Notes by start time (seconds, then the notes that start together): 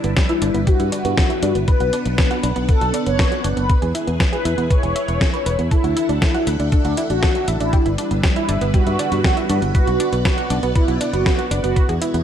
Already playing: G3 D4 E4 B4
0.04 G1 B3, closed hi-hat
0.17 G4, kick, snare, closed hi-hat
0.29 E4, closed hi-hat
0.42 G1 D4, closed hi-hat
0.54 G1 B3, closed hi-hat
0.67 F#4 G4, kick, closed hi-hat
0.80 G2 E4, closed hi-hat
0.92 D4, closed hi-hat
1.05 G2 B3, closed hi-hat
1.17 G4, kick, snare, closed hi-hat
1.30 E4, closed hi-hat
1.42 G2 D4, closed hi-hat
1.55 G1 B3, closed hi-hat
1.68 B3 D4 B4 F#5, kick, closed hi-hat
1.80 B1 F#4, closed hi-hat
1.93 D4, closed hi-hat
2.06 B1 B3, closed hi-hat
2.18 B4, kick, snare, closed hi-hat
2.31 F#4, closed hi-hat
2.43 B1 D4, closed hi-hat
2.56 B1 B3, closed hi-hat
2.69 A4 B4, kick, closed hi-hat
2.81 B1 F#4, closed hi-hat
2.94 D4, closed hi-hat
3.06 F#1 B3 C#5, closed hi-hat
3.19 B4, kick, snare, closed hi-hat
3.32 F#4, closed hi-hat
3.44 F#1 D4, closed hi-hat
3.57 F#1 B3 B4, closed hi-hat
3.70 E4 G#4 B4, kick, closed hi-hat
3.82 E2 G#4, closed hi-hat
3.95 E4, closed hi-hat
4.07 E2 B3, closed hi-hat
4.20 B4, kick, snare, closed hi-hat
4.33 G#4 B4, closed hi-hat
4.45 E2 E4, closed hi-hat
4.58 E2 B3, closed hi-hat
4.71 B4 C#5, kick, closed hi-hat
4.83 E1 G#4, closed hi-hat
4.96 E5, closed hi-hat
5.08 E1 B4, closed hi-hat
5.21 G#5, kick, snare, closed hi-hat
5.34 B4, closed hi-hat
5.46 E1 B4, closed hi-hat
5.59 E2 B3, closed hi-hat
5.71 D4 E4 A4 E5 F#5, kick, closed hi-hat
5.84 D2 F#4, closed hi-hat
5.97 E4, closed hi-hat
6.09 D2 D4, closed hi-hat
6.22 E4 A4, kick, snare, closed hi-hat
6.35 F#4, closed hi-hat
6.47 D2 E4, closed hi-hat
6.60 D2 D4, closed hi-hat
6.72 D4 A4, kick, closed hi-hat
6.85 D2 F#4, closed hi-hat
6.97 E4, closed hi-hat
7.10 A1 D4 F#4, closed hi-hat
7.23 A4, kick, snare, closed hi-hat
7.35 F#4, closed hi-hat
7.48 A1 E4, closed hi-hat
7.60 A1 D4 E4, closed hi-hat
7.73 G3 E4 G4 B4, kick, closed hi-hat
7.86 G1 E4, closed hi-hat
7.98 D4, closed hi-hat
8.11 G1 B3, closed hi-hat
8.23 G4, kick, snare, closed hi-hat
8.36 E4, closed hi-hat
8.49 G1 D4, closed hi-hat
8.61 G1 B3, closed hi-hat
8.74 F#4 G4, kick, closed hi-hat
8.86 G2 E4, closed hi-hat
8.99 D4, closed hi-hat
9.12 G2 B3, closed hi-hat
9.24 G4, kick, snare, closed hi-hat
9.37 E4, closed hi-hat
9.49 G2 D4, closed hi-hat
9.62 G1 B3, closed hi-hat
9.75 B3 F#4 B4 D5 F#5, kick, closed hi-hat
9.87 B1 F#4, closed hi-hat
10.00 D4, closed hi-hat
10.12 B1 B3, closed hi-hat
10.25 F#4 B4, kick, snare, closed hi-hat
10.38 F#4, closed hi-hat
10.50 B1 D4, closed hi-hat
10.63 B1 B3, closed hi-hat
10.75 E4 B4, kick, closed hi-hat
10.88 B1 F#4, closed hi-hat
11.01 D4, closed hi-hat
11.13 F#1 B3 F#4, closed hi-hat
11.26 B4, kick, snare, closed hi-hat
11.39 F#4, closed hi-hat
11.51 F#1 D4, closed hi-hat
11.64 F#1 B3 F#4, closed hi-hat
11.76 B3 E4 G#4 B4, kick, closed hi-hat
11.89 E2 G#4, closed hi-hat
12.01 E4, closed hi-hat
12.14 E2 B3, closed hi-hat